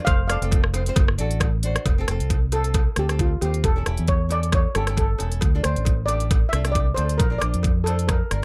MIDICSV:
0, 0, Header, 1, 5, 480
1, 0, Start_track
1, 0, Key_signature, -1, "major"
1, 0, Tempo, 445765
1, 81, Time_signature, 4, 2, 24, 8
1, 9094, End_track
2, 0, Start_track
2, 0, Title_t, "Steel pan"
2, 0, Program_c, 0, 114
2, 51, Note_on_c, 0, 77, 112
2, 75, Note_on_c, 0, 72, 85
2, 284, Note_off_c, 0, 77, 0
2, 297, Note_on_c, 0, 77, 91
2, 300, Note_off_c, 0, 72, 0
2, 321, Note_on_c, 0, 74, 73
2, 754, Note_off_c, 0, 77, 0
2, 767, Note_off_c, 0, 74, 0
2, 2724, Note_on_c, 0, 69, 87
2, 3216, Note_off_c, 0, 69, 0
2, 3221, Note_on_c, 0, 67, 78
2, 3454, Note_on_c, 0, 65, 73
2, 3457, Note_off_c, 0, 67, 0
2, 3681, Note_on_c, 0, 67, 76
2, 3694, Note_off_c, 0, 65, 0
2, 3928, Note_off_c, 0, 67, 0
2, 3932, Note_on_c, 0, 69, 94
2, 4373, Note_off_c, 0, 69, 0
2, 4399, Note_on_c, 0, 73, 95
2, 4647, Note_off_c, 0, 73, 0
2, 4651, Note_on_c, 0, 74, 107
2, 4893, Note_off_c, 0, 74, 0
2, 4899, Note_on_c, 0, 73, 94
2, 5122, Note_on_c, 0, 69, 85
2, 5136, Note_off_c, 0, 73, 0
2, 5353, Note_off_c, 0, 69, 0
2, 5366, Note_on_c, 0, 69, 74
2, 5810, Note_off_c, 0, 69, 0
2, 6068, Note_on_c, 0, 72, 88
2, 6522, Note_on_c, 0, 74, 108
2, 6568, Note_off_c, 0, 72, 0
2, 6988, Note_on_c, 0, 76, 93
2, 7036, Note_off_c, 0, 74, 0
2, 7232, Note_on_c, 0, 74, 91
2, 7261, Note_off_c, 0, 76, 0
2, 7478, Note_on_c, 0, 72, 83
2, 7503, Note_off_c, 0, 74, 0
2, 7728, Note_on_c, 0, 70, 84
2, 7746, Note_off_c, 0, 72, 0
2, 7952, Note_on_c, 0, 74, 98
2, 7991, Note_off_c, 0, 70, 0
2, 8441, Note_on_c, 0, 69, 81
2, 8470, Note_off_c, 0, 74, 0
2, 8697, Note_on_c, 0, 70, 73
2, 8707, Note_off_c, 0, 69, 0
2, 9094, Note_off_c, 0, 70, 0
2, 9094, End_track
3, 0, Start_track
3, 0, Title_t, "Nylon-string guitar"
3, 0, Program_c, 1, 24
3, 318, Note_on_c, 1, 60, 77
3, 325, Note_on_c, 1, 65, 67
3, 340, Note_on_c, 1, 69, 82
3, 396, Note_off_c, 1, 60, 0
3, 400, Note_off_c, 1, 65, 0
3, 407, Note_off_c, 1, 69, 0
3, 454, Note_on_c, 1, 60, 76
3, 461, Note_on_c, 1, 65, 71
3, 475, Note_on_c, 1, 69, 83
3, 665, Note_off_c, 1, 60, 0
3, 669, Note_off_c, 1, 65, 0
3, 676, Note_off_c, 1, 69, 0
3, 791, Note_on_c, 1, 60, 81
3, 810, Note_on_c, 1, 65, 73
3, 814, Note_on_c, 1, 72, 84
3, 873, Note_off_c, 1, 60, 0
3, 882, Note_off_c, 1, 72, 0
3, 883, Note_off_c, 1, 65, 0
3, 941, Note_on_c, 1, 60, 87
3, 948, Note_on_c, 1, 65, 79
3, 958, Note_on_c, 1, 72, 103
3, 1046, Note_off_c, 1, 60, 0
3, 1050, Note_off_c, 1, 65, 0
3, 1054, Note_off_c, 1, 72, 0
3, 1271, Note_on_c, 1, 62, 85
3, 1289, Note_on_c, 1, 66, 74
3, 1297, Note_on_c, 1, 69, 97
3, 1567, Note_off_c, 1, 62, 0
3, 1577, Note_off_c, 1, 66, 0
3, 1578, Note_off_c, 1, 69, 0
3, 1759, Note_on_c, 1, 62, 81
3, 1771, Note_on_c, 1, 66, 72
3, 1781, Note_on_c, 1, 72, 91
3, 1999, Note_off_c, 1, 62, 0
3, 2005, Note_off_c, 1, 66, 0
3, 2010, Note_off_c, 1, 72, 0
3, 2135, Note_on_c, 1, 60, 84
3, 2147, Note_on_c, 1, 65, 68
3, 2159, Note_on_c, 1, 69, 90
3, 2198, Note_off_c, 1, 60, 0
3, 2205, Note_off_c, 1, 65, 0
3, 2210, Note_off_c, 1, 69, 0
3, 2248, Note_on_c, 1, 60, 82
3, 2253, Note_on_c, 1, 65, 71
3, 2272, Note_on_c, 1, 69, 92
3, 2535, Note_off_c, 1, 60, 0
3, 2538, Note_off_c, 1, 65, 0
3, 2547, Note_off_c, 1, 69, 0
3, 2723, Note_on_c, 1, 60, 71
3, 2729, Note_on_c, 1, 65, 61
3, 2737, Note_on_c, 1, 69, 70
3, 3013, Note_off_c, 1, 60, 0
3, 3016, Note_off_c, 1, 65, 0
3, 3020, Note_off_c, 1, 69, 0
3, 3202, Note_on_c, 1, 60, 72
3, 3207, Note_on_c, 1, 65, 62
3, 3221, Note_on_c, 1, 69, 75
3, 3278, Note_off_c, 1, 60, 0
3, 3281, Note_off_c, 1, 65, 0
3, 3288, Note_off_c, 1, 69, 0
3, 3327, Note_on_c, 1, 60, 72
3, 3344, Note_on_c, 1, 65, 61
3, 3350, Note_on_c, 1, 69, 77
3, 3542, Note_off_c, 1, 60, 0
3, 3551, Note_off_c, 1, 65, 0
3, 3552, Note_off_c, 1, 69, 0
3, 3686, Note_on_c, 1, 60, 68
3, 3696, Note_on_c, 1, 65, 65
3, 3709, Note_on_c, 1, 72, 74
3, 3901, Note_off_c, 1, 60, 0
3, 3906, Note_off_c, 1, 65, 0
3, 3912, Note_off_c, 1, 72, 0
3, 4047, Note_on_c, 1, 61, 68
3, 4056, Note_on_c, 1, 64, 61
3, 4069, Note_on_c, 1, 69, 73
3, 4114, Note_off_c, 1, 61, 0
3, 4119, Note_off_c, 1, 64, 0
3, 4126, Note_off_c, 1, 69, 0
3, 4157, Note_on_c, 1, 61, 71
3, 4166, Note_on_c, 1, 64, 65
3, 4180, Note_on_c, 1, 67, 75
3, 4450, Note_off_c, 1, 61, 0
3, 4455, Note_off_c, 1, 64, 0
3, 4462, Note_off_c, 1, 67, 0
3, 4619, Note_on_c, 1, 61, 72
3, 4628, Note_on_c, 1, 64, 66
3, 4638, Note_on_c, 1, 69, 76
3, 4921, Note_off_c, 1, 61, 0
3, 4926, Note_off_c, 1, 64, 0
3, 4931, Note_off_c, 1, 69, 0
3, 5116, Note_on_c, 1, 61, 68
3, 5126, Note_on_c, 1, 64, 61
3, 5133, Note_on_c, 1, 67, 76
3, 5195, Note_off_c, 1, 61, 0
3, 5201, Note_off_c, 1, 64, 0
3, 5204, Note_off_c, 1, 67, 0
3, 5252, Note_on_c, 1, 61, 71
3, 5259, Note_on_c, 1, 64, 68
3, 5268, Note_on_c, 1, 67, 81
3, 5465, Note_off_c, 1, 61, 0
3, 5467, Note_off_c, 1, 64, 0
3, 5473, Note_off_c, 1, 67, 0
3, 5580, Note_on_c, 1, 61, 68
3, 5593, Note_on_c, 1, 64, 60
3, 5605, Note_on_c, 1, 69, 78
3, 5808, Note_off_c, 1, 61, 0
3, 5814, Note_off_c, 1, 64, 0
3, 5820, Note_off_c, 1, 69, 0
3, 5974, Note_on_c, 1, 62, 69
3, 5979, Note_on_c, 1, 65, 68
3, 5982, Note_on_c, 1, 69, 78
3, 6038, Note_off_c, 1, 62, 0
3, 6040, Note_off_c, 1, 65, 0
3, 6042, Note_off_c, 1, 69, 0
3, 6079, Note_on_c, 1, 62, 67
3, 6092, Note_on_c, 1, 65, 63
3, 6100, Note_on_c, 1, 72, 76
3, 6371, Note_off_c, 1, 62, 0
3, 6377, Note_off_c, 1, 65, 0
3, 6382, Note_off_c, 1, 72, 0
3, 6541, Note_on_c, 1, 62, 75
3, 6556, Note_on_c, 1, 65, 65
3, 6563, Note_on_c, 1, 67, 80
3, 6842, Note_off_c, 1, 62, 0
3, 6849, Note_off_c, 1, 65, 0
3, 6853, Note_off_c, 1, 67, 0
3, 7036, Note_on_c, 1, 62, 70
3, 7048, Note_on_c, 1, 65, 66
3, 7056, Note_on_c, 1, 69, 75
3, 7115, Note_off_c, 1, 62, 0
3, 7121, Note_off_c, 1, 65, 0
3, 7125, Note_off_c, 1, 69, 0
3, 7163, Note_on_c, 1, 62, 74
3, 7167, Note_on_c, 1, 65, 68
3, 7182, Note_on_c, 1, 67, 80
3, 7379, Note_off_c, 1, 62, 0
3, 7382, Note_off_c, 1, 65, 0
3, 7389, Note_off_c, 1, 67, 0
3, 7499, Note_on_c, 1, 62, 67
3, 7507, Note_on_c, 1, 65, 62
3, 7515, Note_on_c, 1, 69, 73
3, 7727, Note_off_c, 1, 62, 0
3, 7731, Note_off_c, 1, 65, 0
3, 7735, Note_off_c, 1, 69, 0
3, 7860, Note_on_c, 1, 62, 67
3, 7873, Note_on_c, 1, 65, 58
3, 7882, Note_on_c, 1, 70, 72
3, 7941, Note_off_c, 1, 62, 0
3, 7947, Note_off_c, 1, 65, 0
3, 7951, Note_off_c, 1, 70, 0
3, 7968, Note_on_c, 1, 62, 73
3, 7981, Note_on_c, 1, 65, 63
3, 7985, Note_on_c, 1, 72, 75
3, 8274, Note_off_c, 1, 62, 0
3, 8281, Note_off_c, 1, 65, 0
3, 8283, Note_off_c, 1, 72, 0
3, 8467, Note_on_c, 1, 62, 68
3, 8474, Note_on_c, 1, 65, 62
3, 8487, Note_on_c, 1, 72, 74
3, 8764, Note_off_c, 1, 62, 0
3, 8767, Note_off_c, 1, 65, 0
3, 8774, Note_off_c, 1, 72, 0
3, 8946, Note_on_c, 1, 62, 68
3, 8956, Note_on_c, 1, 65, 64
3, 8962, Note_on_c, 1, 70, 71
3, 9029, Note_off_c, 1, 62, 0
3, 9035, Note_off_c, 1, 65, 0
3, 9036, Note_off_c, 1, 70, 0
3, 9094, End_track
4, 0, Start_track
4, 0, Title_t, "Fingered electric bass"
4, 0, Program_c, 2, 33
4, 79, Note_on_c, 2, 29, 93
4, 396, Note_off_c, 2, 29, 0
4, 448, Note_on_c, 2, 29, 89
4, 956, Note_off_c, 2, 29, 0
4, 1040, Note_on_c, 2, 30, 110
4, 1246, Note_off_c, 2, 30, 0
4, 1279, Note_on_c, 2, 33, 83
4, 1898, Note_off_c, 2, 33, 0
4, 2002, Note_on_c, 2, 29, 86
4, 2207, Note_off_c, 2, 29, 0
4, 2240, Note_on_c, 2, 29, 86
4, 2351, Note_off_c, 2, 29, 0
4, 2370, Note_on_c, 2, 36, 77
4, 3084, Note_off_c, 2, 36, 0
4, 3199, Note_on_c, 2, 38, 85
4, 3613, Note_off_c, 2, 38, 0
4, 3678, Note_on_c, 2, 39, 73
4, 3885, Note_off_c, 2, 39, 0
4, 3919, Note_on_c, 2, 28, 82
4, 4126, Note_off_c, 2, 28, 0
4, 4164, Note_on_c, 2, 28, 88
4, 4273, Note_off_c, 2, 28, 0
4, 4300, Note_on_c, 2, 40, 80
4, 5010, Note_off_c, 2, 40, 0
4, 5121, Note_on_c, 2, 31, 94
4, 5534, Note_off_c, 2, 31, 0
4, 5602, Note_on_c, 2, 28, 78
4, 5808, Note_off_c, 2, 28, 0
4, 5837, Note_on_c, 2, 38, 96
4, 6045, Note_off_c, 2, 38, 0
4, 6081, Note_on_c, 2, 38, 86
4, 6192, Note_off_c, 2, 38, 0
4, 6209, Note_on_c, 2, 33, 79
4, 6924, Note_off_c, 2, 33, 0
4, 7032, Note_on_c, 2, 36, 90
4, 7448, Note_off_c, 2, 36, 0
4, 7514, Note_on_c, 2, 38, 76
4, 7722, Note_off_c, 2, 38, 0
4, 7753, Note_on_c, 2, 34, 92
4, 7962, Note_off_c, 2, 34, 0
4, 7991, Note_on_c, 2, 34, 87
4, 8105, Note_off_c, 2, 34, 0
4, 8124, Note_on_c, 2, 41, 80
4, 8840, Note_off_c, 2, 41, 0
4, 8955, Note_on_c, 2, 31, 95
4, 9094, Note_off_c, 2, 31, 0
4, 9094, End_track
5, 0, Start_track
5, 0, Title_t, "Drums"
5, 71, Note_on_c, 9, 56, 104
5, 75, Note_on_c, 9, 42, 68
5, 77, Note_on_c, 9, 36, 122
5, 179, Note_off_c, 9, 56, 0
5, 183, Note_off_c, 9, 42, 0
5, 185, Note_off_c, 9, 36, 0
5, 318, Note_on_c, 9, 37, 86
5, 318, Note_on_c, 9, 42, 91
5, 425, Note_off_c, 9, 37, 0
5, 425, Note_off_c, 9, 42, 0
5, 454, Note_on_c, 9, 42, 61
5, 554, Note_on_c, 9, 56, 74
5, 562, Note_off_c, 9, 42, 0
5, 562, Note_on_c, 9, 36, 91
5, 565, Note_on_c, 9, 42, 60
5, 662, Note_off_c, 9, 56, 0
5, 669, Note_off_c, 9, 36, 0
5, 672, Note_off_c, 9, 42, 0
5, 686, Note_on_c, 9, 37, 85
5, 793, Note_off_c, 9, 37, 0
5, 794, Note_on_c, 9, 56, 75
5, 799, Note_on_c, 9, 42, 83
5, 901, Note_off_c, 9, 56, 0
5, 906, Note_off_c, 9, 42, 0
5, 930, Note_on_c, 9, 42, 64
5, 1034, Note_on_c, 9, 56, 104
5, 1036, Note_off_c, 9, 42, 0
5, 1036, Note_on_c, 9, 42, 66
5, 1038, Note_on_c, 9, 36, 119
5, 1141, Note_off_c, 9, 56, 0
5, 1144, Note_off_c, 9, 42, 0
5, 1146, Note_off_c, 9, 36, 0
5, 1167, Note_on_c, 9, 37, 84
5, 1275, Note_off_c, 9, 37, 0
5, 1277, Note_on_c, 9, 42, 80
5, 1384, Note_off_c, 9, 42, 0
5, 1407, Note_on_c, 9, 42, 58
5, 1511, Note_on_c, 9, 56, 88
5, 1515, Note_off_c, 9, 42, 0
5, 1516, Note_on_c, 9, 36, 87
5, 1516, Note_on_c, 9, 37, 86
5, 1516, Note_on_c, 9, 42, 58
5, 1618, Note_off_c, 9, 56, 0
5, 1624, Note_off_c, 9, 36, 0
5, 1624, Note_off_c, 9, 37, 0
5, 1624, Note_off_c, 9, 42, 0
5, 1755, Note_on_c, 9, 42, 83
5, 1862, Note_off_c, 9, 42, 0
5, 1891, Note_on_c, 9, 37, 86
5, 1891, Note_on_c, 9, 42, 62
5, 1999, Note_off_c, 9, 37, 0
5, 1999, Note_off_c, 9, 42, 0
5, 1999, Note_on_c, 9, 36, 103
5, 1999, Note_on_c, 9, 56, 88
5, 2002, Note_on_c, 9, 42, 58
5, 2106, Note_off_c, 9, 36, 0
5, 2107, Note_off_c, 9, 56, 0
5, 2110, Note_off_c, 9, 42, 0
5, 2238, Note_on_c, 9, 37, 84
5, 2238, Note_on_c, 9, 42, 87
5, 2346, Note_off_c, 9, 37, 0
5, 2346, Note_off_c, 9, 42, 0
5, 2372, Note_on_c, 9, 42, 58
5, 2477, Note_on_c, 9, 56, 69
5, 2479, Note_on_c, 9, 36, 84
5, 2480, Note_off_c, 9, 42, 0
5, 2481, Note_on_c, 9, 42, 64
5, 2585, Note_off_c, 9, 56, 0
5, 2586, Note_off_c, 9, 36, 0
5, 2588, Note_off_c, 9, 42, 0
5, 2714, Note_on_c, 9, 42, 82
5, 2717, Note_on_c, 9, 56, 68
5, 2822, Note_off_c, 9, 42, 0
5, 2824, Note_off_c, 9, 56, 0
5, 2846, Note_on_c, 9, 42, 59
5, 2951, Note_off_c, 9, 42, 0
5, 2951, Note_on_c, 9, 42, 65
5, 2955, Note_on_c, 9, 36, 109
5, 2958, Note_on_c, 9, 56, 88
5, 3059, Note_off_c, 9, 42, 0
5, 3063, Note_off_c, 9, 36, 0
5, 3066, Note_off_c, 9, 56, 0
5, 3190, Note_on_c, 9, 37, 80
5, 3190, Note_on_c, 9, 42, 79
5, 3298, Note_off_c, 9, 37, 0
5, 3298, Note_off_c, 9, 42, 0
5, 3330, Note_on_c, 9, 37, 70
5, 3330, Note_on_c, 9, 42, 62
5, 3436, Note_on_c, 9, 56, 64
5, 3438, Note_off_c, 9, 37, 0
5, 3438, Note_off_c, 9, 42, 0
5, 3438, Note_on_c, 9, 42, 55
5, 3439, Note_on_c, 9, 36, 75
5, 3544, Note_off_c, 9, 56, 0
5, 3546, Note_off_c, 9, 36, 0
5, 3546, Note_off_c, 9, 42, 0
5, 3676, Note_on_c, 9, 56, 60
5, 3683, Note_on_c, 9, 42, 81
5, 3784, Note_off_c, 9, 56, 0
5, 3791, Note_off_c, 9, 42, 0
5, 3812, Note_on_c, 9, 42, 59
5, 3917, Note_on_c, 9, 56, 82
5, 3918, Note_off_c, 9, 42, 0
5, 3918, Note_on_c, 9, 36, 102
5, 3918, Note_on_c, 9, 42, 57
5, 4025, Note_off_c, 9, 56, 0
5, 4026, Note_off_c, 9, 36, 0
5, 4026, Note_off_c, 9, 42, 0
5, 4158, Note_on_c, 9, 37, 83
5, 4158, Note_on_c, 9, 42, 71
5, 4265, Note_off_c, 9, 37, 0
5, 4265, Note_off_c, 9, 42, 0
5, 4280, Note_on_c, 9, 42, 56
5, 4388, Note_off_c, 9, 42, 0
5, 4388, Note_on_c, 9, 42, 57
5, 4395, Note_on_c, 9, 56, 62
5, 4396, Note_on_c, 9, 36, 85
5, 4496, Note_off_c, 9, 42, 0
5, 4503, Note_off_c, 9, 56, 0
5, 4504, Note_off_c, 9, 36, 0
5, 4634, Note_on_c, 9, 56, 57
5, 4637, Note_on_c, 9, 42, 70
5, 4742, Note_off_c, 9, 56, 0
5, 4744, Note_off_c, 9, 42, 0
5, 4772, Note_on_c, 9, 42, 57
5, 4871, Note_off_c, 9, 42, 0
5, 4871, Note_on_c, 9, 37, 77
5, 4871, Note_on_c, 9, 42, 60
5, 4877, Note_on_c, 9, 36, 111
5, 4877, Note_on_c, 9, 56, 85
5, 4979, Note_off_c, 9, 37, 0
5, 4979, Note_off_c, 9, 42, 0
5, 4984, Note_off_c, 9, 36, 0
5, 4985, Note_off_c, 9, 56, 0
5, 5114, Note_on_c, 9, 37, 78
5, 5114, Note_on_c, 9, 42, 71
5, 5222, Note_off_c, 9, 37, 0
5, 5222, Note_off_c, 9, 42, 0
5, 5244, Note_on_c, 9, 37, 74
5, 5244, Note_on_c, 9, 42, 59
5, 5351, Note_on_c, 9, 56, 66
5, 5352, Note_off_c, 9, 37, 0
5, 5352, Note_off_c, 9, 42, 0
5, 5357, Note_on_c, 9, 36, 77
5, 5358, Note_on_c, 9, 42, 54
5, 5458, Note_off_c, 9, 56, 0
5, 5465, Note_off_c, 9, 36, 0
5, 5466, Note_off_c, 9, 42, 0
5, 5585, Note_on_c, 9, 56, 59
5, 5599, Note_on_c, 9, 42, 82
5, 5693, Note_off_c, 9, 56, 0
5, 5706, Note_off_c, 9, 42, 0
5, 5724, Note_on_c, 9, 42, 58
5, 5825, Note_on_c, 9, 56, 76
5, 5832, Note_off_c, 9, 42, 0
5, 5836, Note_on_c, 9, 36, 103
5, 5836, Note_on_c, 9, 42, 60
5, 5933, Note_off_c, 9, 56, 0
5, 5944, Note_off_c, 9, 36, 0
5, 5944, Note_off_c, 9, 42, 0
5, 6072, Note_on_c, 9, 37, 85
5, 6072, Note_on_c, 9, 42, 82
5, 6180, Note_off_c, 9, 37, 0
5, 6180, Note_off_c, 9, 42, 0
5, 6206, Note_on_c, 9, 42, 57
5, 6301, Note_on_c, 9, 56, 63
5, 6314, Note_off_c, 9, 42, 0
5, 6314, Note_on_c, 9, 42, 59
5, 6315, Note_on_c, 9, 36, 79
5, 6409, Note_off_c, 9, 56, 0
5, 6422, Note_off_c, 9, 36, 0
5, 6422, Note_off_c, 9, 42, 0
5, 6551, Note_on_c, 9, 42, 84
5, 6551, Note_on_c, 9, 56, 59
5, 6659, Note_off_c, 9, 42, 0
5, 6659, Note_off_c, 9, 56, 0
5, 6679, Note_on_c, 9, 42, 61
5, 6786, Note_off_c, 9, 42, 0
5, 6791, Note_on_c, 9, 42, 65
5, 6792, Note_on_c, 9, 36, 109
5, 6795, Note_on_c, 9, 56, 83
5, 6899, Note_off_c, 9, 42, 0
5, 6900, Note_off_c, 9, 36, 0
5, 6903, Note_off_c, 9, 56, 0
5, 7030, Note_on_c, 9, 37, 77
5, 7030, Note_on_c, 9, 42, 82
5, 7138, Note_off_c, 9, 37, 0
5, 7138, Note_off_c, 9, 42, 0
5, 7156, Note_on_c, 9, 37, 68
5, 7156, Note_on_c, 9, 42, 60
5, 7264, Note_off_c, 9, 37, 0
5, 7264, Note_off_c, 9, 42, 0
5, 7271, Note_on_c, 9, 36, 82
5, 7271, Note_on_c, 9, 42, 58
5, 7276, Note_on_c, 9, 56, 63
5, 7378, Note_off_c, 9, 42, 0
5, 7379, Note_off_c, 9, 36, 0
5, 7383, Note_off_c, 9, 56, 0
5, 7498, Note_on_c, 9, 56, 63
5, 7510, Note_on_c, 9, 42, 83
5, 7605, Note_off_c, 9, 56, 0
5, 7618, Note_off_c, 9, 42, 0
5, 7639, Note_on_c, 9, 42, 58
5, 7746, Note_off_c, 9, 42, 0
5, 7746, Note_on_c, 9, 56, 89
5, 7750, Note_on_c, 9, 36, 111
5, 7751, Note_on_c, 9, 42, 60
5, 7854, Note_off_c, 9, 56, 0
5, 7857, Note_off_c, 9, 36, 0
5, 7858, Note_off_c, 9, 42, 0
5, 7985, Note_on_c, 9, 37, 82
5, 7985, Note_on_c, 9, 42, 79
5, 8092, Note_off_c, 9, 37, 0
5, 8092, Note_off_c, 9, 42, 0
5, 8116, Note_on_c, 9, 42, 60
5, 8215, Note_on_c, 9, 56, 69
5, 8224, Note_off_c, 9, 42, 0
5, 8230, Note_on_c, 9, 36, 85
5, 8233, Note_on_c, 9, 42, 56
5, 8323, Note_off_c, 9, 56, 0
5, 8338, Note_off_c, 9, 36, 0
5, 8341, Note_off_c, 9, 42, 0
5, 8465, Note_on_c, 9, 56, 72
5, 8476, Note_on_c, 9, 42, 72
5, 8573, Note_off_c, 9, 56, 0
5, 8584, Note_off_c, 9, 42, 0
5, 8603, Note_on_c, 9, 42, 57
5, 8706, Note_on_c, 9, 56, 94
5, 8708, Note_off_c, 9, 42, 0
5, 8708, Note_on_c, 9, 37, 77
5, 8708, Note_on_c, 9, 42, 61
5, 8710, Note_on_c, 9, 36, 106
5, 8814, Note_off_c, 9, 56, 0
5, 8815, Note_off_c, 9, 37, 0
5, 8815, Note_off_c, 9, 42, 0
5, 8817, Note_off_c, 9, 36, 0
5, 8949, Note_on_c, 9, 37, 78
5, 8949, Note_on_c, 9, 42, 75
5, 9057, Note_off_c, 9, 37, 0
5, 9057, Note_off_c, 9, 42, 0
5, 9094, End_track
0, 0, End_of_file